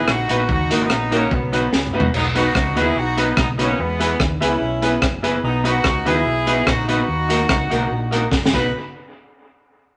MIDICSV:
0, 0, Header, 1, 7, 480
1, 0, Start_track
1, 0, Key_signature, 5, "major"
1, 0, Tempo, 411805
1, 573, Time_signature, 4, 2, 24, 8
1, 11619, End_track
2, 0, Start_track
2, 0, Title_t, "Upright piano"
2, 0, Program_c, 0, 0
2, 335, Note_on_c, 0, 63, 88
2, 345, Note_on_c, 0, 66, 83
2, 350, Note_on_c, 0, 71, 97
2, 473, Note_off_c, 0, 63, 0
2, 478, Note_off_c, 0, 66, 0
2, 480, Note_off_c, 0, 71, 0
2, 814, Note_on_c, 0, 63, 87
2, 821, Note_on_c, 0, 66, 79
2, 826, Note_on_c, 0, 70, 96
2, 952, Note_off_c, 0, 63, 0
2, 956, Note_off_c, 0, 66, 0
2, 958, Note_off_c, 0, 70, 0
2, 1298, Note_on_c, 0, 63, 92
2, 1303, Note_on_c, 0, 66, 83
2, 1310, Note_on_c, 0, 70, 99
2, 1434, Note_off_c, 0, 63, 0
2, 1436, Note_off_c, 0, 66, 0
2, 1440, Note_off_c, 0, 70, 0
2, 1778, Note_on_c, 0, 63, 83
2, 1782, Note_on_c, 0, 66, 79
2, 1790, Note_on_c, 0, 71, 96
2, 1914, Note_off_c, 0, 63, 0
2, 1915, Note_off_c, 0, 66, 0
2, 1920, Note_off_c, 0, 71, 0
2, 2250, Note_on_c, 0, 63, 94
2, 2258, Note_on_c, 0, 66, 80
2, 2265, Note_on_c, 0, 71, 98
2, 2389, Note_off_c, 0, 63, 0
2, 2393, Note_off_c, 0, 66, 0
2, 2396, Note_off_c, 0, 71, 0
2, 2735, Note_on_c, 0, 63, 91
2, 2742, Note_on_c, 0, 66, 81
2, 2747, Note_on_c, 0, 71, 98
2, 2871, Note_off_c, 0, 63, 0
2, 2875, Note_off_c, 0, 66, 0
2, 2877, Note_off_c, 0, 71, 0
2, 3214, Note_on_c, 0, 63, 93
2, 3222, Note_on_c, 0, 66, 86
2, 3228, Note_on_c, 0, 71, 99
2, 3350, Note_off_c, 0, 63, 0
2, 3354, Note_off_c, 0, 66, 0
2, 3357, Note_off_c, 0, 71, 0
2, 3695, Note_on_c, 0, 63, 88
2, 3700, Note_on_c, 0, 66, 74
2, 3708, Note_on_c, 0, 71, 100
2, 3831, Note_off_c, 0, 63, 0
2, 3833, Note_off_c, 0, 66, 0
2, 3837, Note_off_c, 0, 71, 0
2, 3923, Note_on_c, 0, 66, 24
2, 3924, Note_on_c, 0, 71, 30
2, 3976, Note_off_c, 0, 66, 0
2, 3976, Note_off_c, 0, 71, 0
2, 4169, Note_on_c, 0, 63, 89
2, 4177, Note_on_c, 0, 66, 77
2, 4184, Note_on_c, 0, 71, 97
2, 4307, Note_off_c, 0, 63, 0
2, 4312, Note_off_c, 0, 66, 0
2, 4315, Note_off_c, 0, 71, 0
2, 4651, Note_on_c, 0, 64, 89
2, 4658, Note_on_c, 0, 68, 85
2, 4665, Note_on_c, 0, 71, 92
2, 4788, Note_off_c, 0, 64, 0
2, 4792, Note_off_c, 0, 68, 0
2, 4795, Note_off_c, 0, 71, 0
2, 5134, Note_on_c, 0, 64, 96
2, 5141, Note_on_c, 0, 68, 85
2, 5147, Note_on_c, 0, 71, 100
2, 5269, Note_off_c, 0, 64, 0
2, 5273, Note_off_c, 0, 68, 0
2, 5276, Note_off_c, 0, 71, 0
2, 5614, Note_on_c, 0, 64, 82
2, 5622, Note_on_c, 0, 68, 84
2, 5629, Note_on_c, 0, 71, 97
2, 5750, Note_off_c, 0, 64, 0
2, 5754, Note_off_c, 0, 68, 0
2, 5757, Note_off_c, 0, 71, 0
2, 5844, Note_on_c, 0, 71, 28
2, 5846, Note_on_c, 0, 68, 26
2, 5896, Note_off_c, 0, 71, 0
2, 5897, Note_off_c, 0, 68, 0
2, 6090, Note_on_c, 0, 64, 89
2, 6097, Note_on_c, 0, 68, 83
2, 6104, Note_on_c, 0, 71, 103
2, 6227, Note_off_c, 0, 64, 0
2, 6231, Note_off_c, 0, 68, 0
2, 6234, Note_off_c, 0, 71, 0
2, 6575, Note_on_c, 0, 63, 94
2, 6581, Note_on_c, 0, 66, 83
2, 6587, Note_on_c, 0, 71, 93
2, 6709, Note_off_c, 0, 63, 0
2, 6713, Note_off_c, 0, 66, 0
2, 6716, Note_off_c, 0, 71, 0
2, 7055, Note_on_c, 0, 63, 92
2, 7061, Note_on_c, 0, 66, 91
2, 7067, Note_on_c, 0, 71, 107
2, 7190, Note_off_c, 0, 63, 0
2, 7193, Note_off_c, 0, 66, 0
2, 7196, Note_off_c, 0, 71, 0
2, 7533, Note_on_c, 0, 63, 92
2, 7540, Note_on_c, 0, 66, 81
2, 7546, Note_on_c, 0, 71, 102
2, 7669, Note_off_c, 0, 63, 0
2, 7672, Note_off_c, 0, 66, 0
2, 7675, Note_off_c, 0, 71, 0
2, 7768, Note_on_c, 0, 66, 26
2, 7770, Note_on_c, 0, 71, 28
2, 7818, Note_off_c, 0, 66, 0
2, 7819, Note_off_c, 0, 71, 0
2, 8019, Note_on_c, 0, 63, 95
2, 8024, Note_on_c, 0, 66, 84
2, 8031, Note_on_c, 0, 71, 93
2, 8152, Note_off_c, 0, 63, 0
2, 8154, Note_off_c, 0, 66, 0
2, 8158, Note_off_c, 0, 71, 0
2, 8495, Note_on_c, 0, 63, 86
2, 8502, Note_on_c, 0, 66, 84
2, 8510, Note_on_c, 0, 70, 100
2, 8630, Note_off_c, 0, 63, 0
2, 8634, Note_off_c, 0, 66, 0
2, 8638, Note_off_c, 0, 70, 0
2, 8976, Note_on_c, 0, 63, 92
2, 8983, Note_on_c, 0, 66, 86
2, 8991, Note_on_c, 0, 70, 98
2, 9111, Note_off_c, 0, 63, 0
2, 9115, Note_off_c, 0, 66, 0
2, 9118, Note_off_c, 0, 70, 0
2, 9453, Note_on_c, 0, 63, 89
2, 9457, Note_on_c, 0, 66, 76
2, 9468, Note_on_c, 0, 70, 91
2, 9590, Note_off_c, 0, 63, 0
2, 9592, Note_off_c, 0, 66, 0
2, 9598, Note_off_c, 0, 70, 0
2, 9693, Note_on_c, 0, 66, 24
2, 9694, Note_on_c, 0, 70, 26
2, 9742, Note_off_c, 0, 66, 0
2, 9742, Note_off_c, 0, 70, 0
2, 9939, Note_on_c, 0, 63, 81
2, 9946, Note_on_c, 0, 66, 73
2, 9952, Note_on_c, 0, 71, 89
2, 10110, Note_off_c, 0, 63, 0
2, 10113, Note_off_c, 0, 66, 0
2, 10117, Note_off_c, 0, 71, 0
2, 11619, End_track
3, 0, Start_track
3, 0, Title_t, "Clean electric guitar"
3, 0, Program_c, 1, 27
3, 347, Note_on_c, 1, 59, 81
3, 350, Note_on_c, 1, 63, 87
3, 358, Note_on_c, 1, 66, 92
3, 369, Note_on_c, 1, 71, 94
3, 466, Note_off_c, 1, 59, 0
3, 468, Note_off_c, 1, 63, 0
3, 472, Note_off_c, 1, 66, 0
3, 477, Note_off_c, 1, 71, 0
3, 830, Note_on_c, 1, 58, 82
3, 839, Note_on_c, 1, 63, 85
3, 839, Note_on_c, 1, 66, 89
3, 851, Note_on_c, 1, 70, 95
3, 947, Note_off_c, 1, 58, 0
3, 952, Note_off_c, 1, 63, 0
3, 952, Note_off_c, 1, 66, 0
3, 958, Note_off_c, 1, 70, 0
3, 1298, Note_on_c, 1, 58, 78
3, 1301, Note_on_c, 1, 63, 86
3, 1312, Note_on_c, 1, 66, 89
3, 1319, Note_on_c, 1, 70, 91
3, 1421, Note_off_c, 1, 58, 0
3, 1423, Note_off_c, 1, 63, 0
3, 1428, Note_off_c, 1, 66, 0
3, 1431, Note_off_c, 1, 70, 0
3, 1777, Note_on_c, 1, 59, 84
3, 1785, Note_on_c, 1, 63, 87
3, 1795, Note_on_c, 1, 66, 94
3, 1802, Note_on_c, 1, 71, 94
3, 1900, Note_off_c, 1, 59, 0
3, 1904, Note_off_c, 1, 63, 0
3, 1909, Note_off_c, 1, 66, 0
3, 1913, Note_off_c, 1, 71, 0
3, 2267, Note_on_c, 1, 59, 80
3, 2275, Note_on_c, 1, 63, 86
3, 2285, Note_on_c, 1, 66, 87
3, 2288, Note_on_c, 1, 71, 94
3, 2385, Note_off_c, 1, 59, 0
3, 2389, Note_off_c, 1, 63, 0
3, 2394, Note_off_c, 1, 66, 0
3, 2395, Note_off_c, 1, 71, 0
3, 2743, Note_on_c, 1, 59, 77
3, 2750, Note_on_c, 1, 63, 89
3, 2757, Note_on_c, 1, 66, 94
3, 2764, Note_on_c, 1, 71, 98
3, 2863, Note_off_c, 1, 59, 0
3, 2866, Note_off_c, 1, 63, 0
3, 2869, Note_off_c, 1, 66, 0
3, 2873, Note_off_c, 1, 71, 0
3, 3218, Note_on_c, 1, 59, 88
3, 3227, Note_on_c, 1, 63, 90
3, 3230, Note_on_c, 1, 66, 95
3, 3237, Note_on_c, 1, 71, 105
3, 3339, Note_off_c, 1, 59, 0
3, 3344, Note_off_c, 1, 63, 0
3, 3346, Note_off_c, 1, 66, 0
3, 3349, Note_off_c, 1, 71, 0
3, 3698, Note_on_c, 1, 59, 80
3, 3710, Note_on_c, 1, 63, 91
3, 3712, Note_on_c, 1, 66, 92
3, 3724, Note_on_c, 1, 71, 94
3, 3819, Note_off_c, 1, 59, 0
3, 3825, Note_off_c, 1, 63, 0
3, 3827, Note_off_c, 1, 66, 0
3, 3832, Note_off_c, 1, 71, 0
3, 4182, Note_on_c, 1, 59, 80
3, 4193, Note_on_c, 1, 63, 88
3, 4199, Note_on_c, 1, 66, 83
3, 4206, Note_on_c, 1, 71, 84
3, 4301, Note_off_c, 1, 59, 0
3, 4306, Note_off_c, 1, 63, 0
3, 4310, Note_off_c, 1, 66, 0
3, 4313, Note_off_c, 1, 71, 0
3, 4665, Note_on_c, 1, 59, 79
3, 4674, Note_on_c, 1, 64, 89
3, 4681, Note_on_c, 1, 68, 89
3, 4683, Note_on_c, 1, 71, 90
3, 4782, Note_off_c, 1, 59, 0
3, 4787, Note_off_c, 1, 64, 0
3, 4790, Note_off_c, 1, 68, 0
3, 4791, Note_off_c, 1, 71, 0
3, 5138, Note_on_c, 1, 59, 79
3, 5151, Note_on_c, 1, 64, 90
3, 5157, Note_on_c, 1, 68, 94
3, 5162, Note_on_c, 1, 71, 91
3, 5258, Note_off_c, 1, 59, 0
3, 5265, Note_off_c, 1, 64, 0
3, 5268, Note_off_c, 1, 68, 0
3, 5270, Note_off_c, 1, 71, 0
3, 5620, Note_on_c, 1, 59, 81
3, 5630, Note_on_c, 1, 64, 78
3, 5637, Note_on_c, 1, 68, 81
3, 5643, Note_on_c, 1, 71, 89
3, 5740, Note_off_c, 1, 59, 0
3, 5744, Note_off_c, 1, 64, 0
3, 5748, Note_off_c, 1, 68, 0
3, 5751, Note_off_c, 1, 71, 0
3, 6097, Note_on_c, 1, 59, 86
3, 6106, Note_on_c, 1, 64, 94
3, 6112, Note_on_c, 1, 68, 88
3, 6121, Note_on_c, 1, 71, 89
3, 6218, Note_off_c, 1, 59, 0
3, 6222, Note_off_c, 1, 64, 0
3, 6225, Note_off_c, 1, 68, 0
3, 6230, Note_off_c, 1, 71, 0
3, 6571, Note_on_c, 1, 59, 82
3, 6584, Note_on_c, 1, 63, 93
3, 6592, Note_on_c, 1, 66, 88
3, 6596, Note_on_c, 1, 71, 87
3, 6695, Note_off_c, 1, 59, 0
3, 6701, Note_off_c, 1, 63, 0
3, 6705, Note_off_c, 1, 66, 0
3, 6707, Note_off_c, 1, 71, 0
3, 7059, Note_on_c, 1, 59, 76
3, 7069, Note_on_c, 1, 63, 88
3, 7081, Note_on_c, 1, 66, 90
3, 7082, Note_on_c, 1, 71, 91
3, 7179, Note_off_c, 1, 59, 0
3, 7184, Note_off_c, 1, 63, 0
3, 7190, Note_off_c, 1, 66, 0
3, 7190, Note_off_c, 1, 71, 0
3, 7540, Note_on_c, 1, 59, 81
3, 7546, Note_on_c, 1, 63, 76
3, 7552, Note_on_c, 1, 66, 81
3, 7560, Note_on_c, 1, 71, 82
3, 7659, Note_off_c, 1, 59, 0
3, 7662, Note_off_c, 1, 63, 0
3, 7665, Note_off_c, 1, 66, 0
3, 7669, Note_off_c, 1, 71, 0
3, 8028, Note_on_c, 1, 59, 90
3, 8035, Note_on_c, 1, 63, 88
3, 8042, Note_on_c, 1, 66, 100
3, 8049, Note_on_c, 1, 71, 98
3, 8144, Note_off_c, 1, 59, 0
3, 8147, Note_off_c, 1, 63, 0
3, 8151, Note_off_c, 1, 66, 0
3, 8154, Note_off_c, 1, 71, 0
3, 8514, Note_on_c, 1, 58, 74
3, 8519, Note_on_c, 1, 63, 89
3, 8531, Note_on_c, 1, 66, 85
3, 8534, Note_on_c, 1, 70, 81
3, 8627, Note_off_c, 1, 58, 0
3, 8629, Note_off_c, 1, 63, 0
3, 8635, Note_off_c, 1, 66, 0
3, 8637, Note_off_c, 1, 70, 0
3, 8986, Note_on_c, 1, 58, 75
3, 8996, Note_on_c, 1, 63, 86
3, 9002, Note_on_c, 1, 66, 98
3, 9007, Note_on_c, 1, 70, 93
3, 9103, Note_off_c, 1, 58, 0
3, 9108, Note_off_c, 1, 63, 0
3, 9111, Note_off_c, 1, 66, 0
3, 9114, Note_off_c, 1, 70, 0
3, 9469, Note_on_c, 1, 58, 84
3, 9475, Note_on_c, 1, 63, 83
3, 9478, Note_on_c, 1, 66, 85
3, 9486, Note_on_c, 1, 70, 93
3, 9585, Note_off_c, 1, 58, 0
3, 9588, Note_off_c, 1, 63, 0
3, 9590, Note_off_c, 1, 66, 0
3, 9594, Note_off_c, 1, 70, 0
3, 9953, Note_on_c, 1, 59, 84
3, 9959, Note_on_c, 1, 63, 81
3, 9962, Note_on_c, 1, 66, 83
3, 9969, Note_on_c, 1, 71, 89
3, 10084, Note_off_c, 1, 59, 0
3, 10087, Note_off_c, 1, 63, 0
3, 10089, Note_off_c, 1, 66, 0
3, 10092, Note_off_c, 1, 71, 0
3, 11619, End_track
4, 0, Start_track
4, 0, Title_t, "Horn section"
4, 0, Program_c, 2, 61
4, 120, Note_on_c, 2, 63, 81
4, 127, Note_on_c, 2, 66, 106
4, 553, Note_off_c, 2, 63, 0
4, 557, Note_off_c, 2, 66, 0
4, 603, Note_on_c, 2, 63, 90
4, 611, Note_on_c, 2, 66, 102
4, 929, Note_off_c, 2, 63, 0
4, 933, Note_off_c, 2, 66, 0
4, 965, Note_on_c, 2, 59, 83
4, 973, Note_on_c, 2, 63, 105
4, 1318, Note_off_c, 2, 59, 0
4, 1322, Note_off_c, 2, 63, 0
4, 1334, Note_on_c, 2, 58, 70
4, 1340, Note_on_c, 2, 61, 89
4, 1546, Note_off_c, 2, 58, 0
4, 1549, Note_off_c, 2, 61, 0
4, 1555, Note_on_c, 2, 54, 61
4, 1559, Note_on_c, 2, 59, 81
4, 2275, Note_off_c, 2, 54, 0
4, 2277, Note_off_c, 2, 59, 0
4, 2515, Note_on_c, 2, 59, 87
4, 2518, Note_on_c, 2, 63, 106
4, 2623, Note_off_c, 2, 59, 0
4, 2625, Note_off_c, 2, 63, 0
4, 2764, Note_on_c, 2, 63, 84
4, 2771, Note_on_c, 2, 66, 110
4, 3200, Note_off_c, 2, 63, 0
4, 3204, Note_off_c, 2, 66, 0
4, 3249, Note_on_c, 2, 64, 82
4, 3253, Note_on_c, 2, 68, 103
4, 3462, Note_off_c, 2, 64, 0
4, 3465, Note_off_c, 2, 68, 0
4, 3472, Note_on_c, 2, 66, 105
4, 3477, Note_on_c, 2, 63, 86
4, 3713, Note_off_c, 2, 66, 0
4, 3715, Note_off_c, 2, 63, 0
4, 3734, Note_on_c, 2, 63, 97
4, 3740, Note_on_c, 2, 59, 73
4, 3930, Note_off_c, 2, 63, 0
4, 3933, Note_off_c, 2, 59, 0
4, 3959, Note_on_c, 2, 63, 99
4, 3965, Note_on_c, 2, 59, 71
4, 4065, Note_off_c, 2, 63, 0
4, 4070, Note_off_c, 2, 59, 0
4, 4209, Note_on_c, 2, 58, 80
4, 4209, Note_on_c, 2, 61, 95
4, 4407, Note_off_c, 2, 58, 0
4, 4407, Note_off_c, 2, 61, 0
4, 4429, Note_on_c, 2, 59, 104
4, 4434, Note_on_c, 2, 56, 83
4, 4898, Note_off_c, 2, 59, 0
4, 4901, Note_off_c, 2, 56, 0
4, 5158, Note_on_c, 2, 64, 93
4, 5162, Note_on_c, 2, 61, 73
4, 5809, Note_off_c, 2, 64, 0
4, 5811, Note_off_c, 2, 61, 0
4, 6343, Note_on_c, 2, 63, 105
4, 6348, Note_on_c, 2, 59, 80
4, 6570, Note_off_c, 2, 63, 0
4, 6573, Note_off_c, 2, 59, 0
4, 6590, Note_on_c, 2, 66, 109
4, 6601, Note_on_c, 2, 63, 92
4, 7065, Note_off_c, 2, 66, 0
4, 7070, Note_off_c, 2, 63, 0
4, 7072, Note_on_c, 2, 68, 113
4, 7084, Note_on_c, 2, 64, 95
4, 7773, Note_off_c, 2, 68, 0
4, 7777, Note_on_c, 2, 66, 103
4, 7779, Note_off_c, 2, 64, 0
4, 7787, Note_on_c, 2, 63, 84
4, 8013, Note_off_c, 2, 66, 0
4, 8023, Note_off_c, 2, 63, 0
4, 8027, Note_on_c, 2, 66, 102
4, 8037, Note_on_c, 2, 63, 83
4, 9646, Note_off_c, 2, 66, 0
4, 9651, Note_off_c, 2, 63, 0
4, 9959, Note_on_c, 2, 71, 91
4, 10163, Note_off_c, 2, 71, 0
4, 11619, End_track
5, 0, Start_track
5, 0, Title_t, "Fingered electric bass"
5, 0, Program_c, 3, 33
5, 90, Note_on_c, 3, 34, 89
5, 306, Note_off_c, 3, 34, 0
5, 344, Note_on_c, 3, 34, 84
5, 538, Note_off_c, 3, 34, 0
5, 572, Note_on_c, 3, 39, 105
5, 787, Note_off_c, 3, 39, 0
5, 823, Note_on_c, 3, 32, 92
5, 1017, Note_off_c, 3, 32, 0
5, 1056, Note_on_c, 3, 34, 87
5, 1462, Note_off_c, 3, 34, 0
5, 1531, Note_on_c, 3, 35, 92
5, 1939, Note_off_c, 3, 35, 0
5, 2012, Note_on_c, 3, 37, 78
5, 2226, Note_off_c, 3, 37, 0
5, 2258, Note_on_c, 3, 30, 91
5, 2453, Note_off_c, 3, 30, 0
5, 2486, Note_on_c, 3, 35, 101
5, 2895, Note_off_c, 3, 35, 0
5, 2974, Note_on_c, 3, 37, 101
5, 3228, Note_off_c, 3, 37, 0
5, 3228, Note_on_c, 3, 39, 100
5, 3418, Note_off_c, 3, 39, 0
5, 3448, Note_on_c, 3, 35, 88
5, 3856, Note_off_c, 3, 35, 0
5, 3932, Note_on_c, 3, 35, 82
5, 4338, Note_off_c, 3, 35, 0
5, 4415, Note_on_c, 3, 40, 110
5, 4820, Note_off_c, 3, 40, 0
5, 4897, Note_on_c, 3, 39, 100
5, 5107, Note_off_c, 3, 39, 0
5, 5143, Note_on_c, 3, 37, 83
5, 5334, Note_off_c, 3, 37, 0
5, 5370, Note_on_c, 3, 35, 83
5, 5776, Note_off_c, 3, 35, 0
5, 5850, Note_on_c, 3, 30, 89
5, 6256, Note_off_c, 3, 30, 0
5, 6332, Note_on_c, 3, 35, 115
5, 6738, Note_off_c, 3, 35, 0
5, 6817, Note_on_c, 3, 37, 93
5, 7027, Note_off_c, 3, 37, 0
5, 7067, Note_on_c, 3, 39, 85
5, 7257, Note_off_c, 3, 39, 0
5, 7286, Note_on_c, 3, 35, 91
5, 7694, Note_off_c, 3, 35, 0
5, 7772, Note_on_c, 3, 34, 93
5, 8178, Note_off_c, 3, 34, 0
5, 8255, Note_on_c, 3, 39, 103
5, 8660, Note_off_c, 3, 39, 0
5, 8736, Note_on_c, 3, 37, 85
5, 8947, Note_off_c, 3, 37, 0
5, 8991, Note_on_c, 3, 35, 87
5, 9180, Note_off_c, 3, 35, 0
5, 9213, Note_on_c, 3, 34, 107
5, 9620, Note_off_c, 3, 34, 0
5, 9695, Note_on_c, 3, 30, 91
5, 9907, Note_off_c, 3, 30, 0
5, 9945, Note_on_c, 3, 35, 91
5, 10156, Note_off_c, 3, 35, 0
5, 11619, End_track
6, 0, Start_track
6, 0, Title_t, "Muted clean electric guitar strokes"
6, 2983, Note_on_c, 9, 29, 38
6, 3099, Note_off_c, 9, 29, 0
6, 6801, Note_on_c, 9, 29, 47
6, 6918, Note_off_c, 9, 29, 0
6, 11619, End_track
7, 0, Start_track
7, 0, Title_t, "Drums"
7, 89, Note_on_c, 9, 37, 107
7, 205, Note_off_c, 9, 37, 0
7, 341, Note_on_c, 9, 42, 85
7, 458, Note_off_c, 9, 42, 0
7, 569, Note_on_c, 9, 36, 107
7, 686, Note_off_c, 9, 36, 0
7, 826, Note_on_c, 9, 42, 102
7, 942, Note_off_c, 9, 42, 0
7, 1048, Note_on_c, 9, 37, 110
7, 1164, Note_off_c, 9, 37, 0
7, 1306, Note_on_c, 9, 42, 92
7, 1423, Note_off_c, 9, 42, 0
7, 1530, Note_on_c, 9, 36, 118
7, 1647, Note_off_c, 9, 36, 0
7, 1786, Note_on_c, 9, 42, 85
7, 1902, Note_off_c, 9, 42, 0
7, 2012, Note_on_c, 9, 38, 59
7, 2128, Note_off_c, 9, 38, 0
7, 2172, Note_on_c, 9, 45, 67
7, 2288, Note_off_c, 9, 45, 0
7, 2332, Note_on_c, 9, 43, 103
7, 2448, Note_off_c, 9, 43, 0
7, 2494, Note_on_c, 9, 49, 95
7, 2610, Note_off_c, 9, 49, 0
7, 2745, Note_on_c, 9, 42, 102
7, 2862, Note_off_c, 9, 42, 0
7, 2973, Note_on_c, 9, 36, 121
7, 2973, Note_on_c, 9, 37, 102
7, 3089, Note_off_c, 9, 36, 0
7, 3090, Note_off_c, 9, 37, 0
7, 3224, Note_on_c, 9, 42, 94
7, 3341, Note_off_c, 9, 42, 0
7, 3702, Note_on_c, 9, 42, 86
7, 3818, Note_off_c, 9, 42, 0
7, 3928, Note_on_c, 9, 37, 115
7, 3929, Note_on_c, 9, 36, 116
7, 4045, Note_off_c, 9, 37, 0
7, 4046, Note_off_c, 9, 36, 0
7, 4186, Note_on_c, 9, 42, 84
7, 4303, Note_off_c, 9, 42, 0
7, 4667, Note_on_c, 9, 42, 100
7, 4784, Note_off_c, 9, 42, 0
7, 4894, Note_on_c, 9, 36, 115
7, 4894, Note_on_c, 9, 37, 113
7, 5010, Note_off_c, 9, 36, 0
7, 5010, Note_off_c, 9, 37, 0
7, 5150, Note_on_c, 9, 42, 91
7, 5267, Note_off_c, 9, 42, 0
7, 5623, Note_on_c, 9, 42, 92
7, 5740, Note_off_c, 9, 42, 0
7, 5850, Note_on_c, 9, 36, 111
7, 5853, Note_on_c, 9, 37, 108
7, 5967, Note_off_c, 9, 36, 0
7, 5969, Note_off_c, 9, 37, 0
7, 6108, Note_on_c, 9, 42, 85
7, 6224, Note_off_c, 9, 42, 0
7, 6586, Note_on_c, 9, 42, 100
7, 6703, Note_off_c, 9, 42, 0
7, 6809, Note_on_c, 9, 37, 102
7, 6812, Note_on_c, 9, 36, 116
7, 6925, Note_off_c, 9, 37, 0
7, 6929, Note_off_c, 9, 36, 0
7, 7069, Note_on_c, 9, 42, 91
7, 7185, Note_off_c, 9, 42, 0
7, 7542, Note_on_c, 9, 42, 85
7, 7659, Note_off_c, 9, 42, 0
7, 7772, Note_on_c, 9, 36, 110
7, 7774, Note_on_c, 9, 37, 115
7, 7888, Note_off_c, 9, 36, 0
7, 7890, Note_off_c, 9, 37, 0
7, 8027, Note_on_c, 9, 42, 87
7, 8144, Note_off_c, 9, 42, 0
7, 8509, Note_on_c, 9, 42, 101
7, 8625, Note_off_c, 9, 42, 0
7, 8733, Note_on_c, 9, 37, 110
7, 8734, Note_on_c, 9, 36, 114
7, 8849, Note_off_c, 9, 37, 0
7, 8851, Note_off_c, 9, 36, 0
7, 8992, Note_on_c, 9, 42, 84
7, 9108, Note_off_c, 9, 42, 0
7, 9470, Note_on_c, 9, 42, 85
7, 9587, Note_off_c, 9, 42, 0
7, 9692, Note_on_c, 9, 36, 108
7, 9694, Note_on_c, 9, 38, 55
7, 9809, Note_off_c, 9, 36, 0
7, 9810, Note_off_c, 9, 38, 0
7, 9855, Note_on_c, 9, 38, 69
7, 9944, Note_on_c, 9, 36, 101
7, 9944, Note_on_c, 9, 49, 81
7, 9972, Note_off_c, 9, 38, 0
7, 10060, Note_off_c, 9, 49, 0
7, 10061, Note_off_c, 9, 36, 0
7, 11619, End_track
0, 0, End_of_file